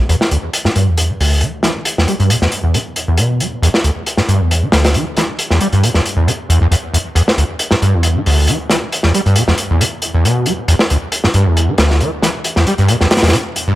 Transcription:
0.09 0.16 E2 loud
0.09 closed hi-hat medium
0.21 snare medium
0.31 0.38 D2 medium
0.31 closed hi-hat medium
0.53 closed hi-hat medium
0.65 0.69 G2 medium
0.65 snare soft
0.76 0.89 G2 medium
0.76 closed hi-hat medium
0.87 1.11 E2 loud
0.97 closed hi-hat medium
1.09 1.15 E3 medium
1.20 1.43 D2 medium
1.20 open hi-hat medium
1.41 1.52 E3 medium
1.41 closed hi-hat medium
1.63 1.70 E3 medium
1.63 snare soft
1.63 closed hi-hat medium
1.85 closed hi-hat medium
1.98 2.06 E2 medium
1.98 snare soft
2.08 2.15 G3 medium
2.08 closed hi-hat medium
2.19 2.31 G2 loud
2.19 closed hi-hat soft
2.30 2.36 B2 medium
2.30 closed hi-hat medium
2.42 2.48 E2 medium
2.42 snare soft
2.52 closed hi-hat medium
2.63 2.76 E2 medium
2.74 2.78 D3 medium
2.74 closed hi-hat medium
2.96 closed hi-hat medium
3.08 3.19 E2 medium
3.17 3.42 B2 loud
3.17 closed hi-hat medium
3.40 3.47 G3 medium
3.40 closed hi-hat medium
3.62 3.69 E2 loud
3.62 closed hi-hat medium
3.74 snare medium
3.84 3.91 D2 medium
3.84 closed hi-hat medium
4.06 closed hi-hat medium
4.17 4.21 G2 medium
4.17 snare soft
4.28 4.41 G2 loud
4.28 closed hi-hat medium
4.40 4.64 E2 medium
4.51 closed hi-hat medium
4.62 4.68 E3 medium
4.72 4.96 D2 medium
4.72 snare loud
4.72 closed hi-hat medium
4.84 snare loud
4.84 closed hi-hat medium
4.94 5.05 E3 medium
4.94 closed hi-hat medium
5.17 5.24 E3 medium
5.17 snare soft
5.17 closed hi-hat medium
5.39 closed hi-hat medium
5.50 5.59 E2 medium
5.50 snare soft
5.60 5.67 G3 medium
5.60 closed hi-hat medium
5.72 5.85 G2 medium
5.72 closed hi-hat soft
5.83 5.90 B2 medium
5.83 closed hi-hat medium
5.94 6.00 E2 medium
5.94 snare soft
6.06 closed hi-hat medium
6.16 6.28 E2 medium
6.27 6.31 D3 medium
6.27 closed hi-hat medium
6.49 6.59 E2 loud
6.49 closed hi-hat medium
6.61 6.67 E2 loud
6.71 6.75 E2 loud
6.71 closed hi-hat medium
6.93 6.97 E2 medium
6.93 closed hi-hat medium
7.15 7.22 E2 loud
7.15 closed hi-hat medium
7.28 snare medium
7.38 7.44 D2 medium
7.38 closed hi-hat medium
7.59 closed hi-hat medium
7.71 7.75 G2 medium
7.71 snare soft
7.82 7.95 G2 medium
7.82 closed hi-hat medium
7.94 8.17 E2 loud
8.03 closed hi-hat medium
8.15 8.21 E3 medium
8.26 8.50 D2 medium
8.26 open hi-hat medium
8.47 8.58 E3 medium
8.47 closed hi-hat medium
8.70 8.77 E3 medium
8.70 snare medium
8.70 closed hi-hat medium
8.92 closed hi-hat medium
9.03 9.12 E2 medium
9.03 snare soft
9.14 9.21 G3 medium
9.14 closed hi-hat medium
9.26 9.38 G2 loud
9.26 closed hi-hat soft
9.36 9.43 B2 loud
9.36 closed hi-hat medium
9.48 9.53 E2 medium
9.48 snare soft
9.58 closed hi-hat medium
9.70 9.82 E2 medium
9.80 9.84 D3 medium
9.80 closed hi-hat medium
10.02 closed hi-hat medium
10.14 10.25 E2 medium
10.24 10.47 B2 loud
10.24 closed hi-hat medium
10.46 10.53 G3 medium
10.46 closed hi-hat medium
10.68 10.75 E2 loud
10.68 closed hi-hat medium
10.79 snare medium
10.90 10.97 D2 medium
10.90 closed hi-hat medium
11.12 closed hi-hat medium
11.24 11.28 G2 medium
11.24 snare soft
11.34 11.47 G2 medium
11.34 closed hi-hat medium
11.46 11.69 E2 loud
11.57 closed hi-hat medium
11.68 11.74 E3 medium
11.78 12.02 D2 medium
11.78 snare loud
11.78 closed hi-hat medium
11.90 snare soft
12.00 12.10 E3 medium
12.00 closed hi-hat medium
12.22 12.29 E3 medium
12.22 snare soft
12.22 closed hi-hat medium
12.44 closed hi-hat medium
12.56 12.65 E2 medium
12.56 snare soft
12.67 12.73 G3 medium
12.67 closed hi-hat medium
12.78 12.91 G2 loud
12.78 closed hi-hat soft
12.88 12.95 B2 medium
12.88 closed hi-hat medium
13.01 13.06 E2 medium
13.01 snare soft
13.11 snare medium
13.11 closed hi-hat medium
13.17 snare medium
13.17 closed hi-hat medium
13.23 13.35 E2 medium
13.23 snare medium
13.23 closed hi-hat medium
13.28 snare medium
13.28 closed hi-hat medium
13.33 13.37 D3 medium
13.33 closed hi-hat medium
13.56 closed hi-hat medium
13.67 13.73 G2 medium

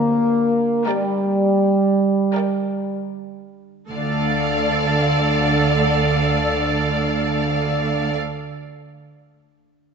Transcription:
0.00 0.62 D2 medium
0.00 3.27 D3 soft
0.00 0.87 A#3 medium
0.00 3.32 D4 soft
0.00 3.36 G4 soft
0.00 3.41 A#4 soft
0.86 3.15 G3 medium
0.86 1.99 A#4 soft
0.86 2.00 D5 soft
0.86 2.00 G5 soft
2.34 3.58 A#4 soft
2.34 3.58 D5 soft
2.34 3.59 G5 soft
3.89 8.14 D2 soft
3.89 8.14 D3 soft
3.89 8.15 D3 soft
3.89 8.13 A4 soft
3.89 8.16 D5 soft
3.89 8.17 F5 soft
3.97 8.21 D4 soft
4.04 8.29 F4 soft
4.11 8.35 A4 soft
4.18 8.42 F5 soft

